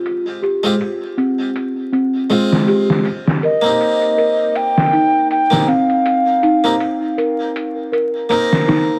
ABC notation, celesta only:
X:1
M:4/4
L:1/8
Q:"Swing 16ths" 1/4=80
K:Cm
V:1 name="Celesta"
z G2 C2 C2 G | z B2 B2 E2 C | z E2 B2 B2 E |]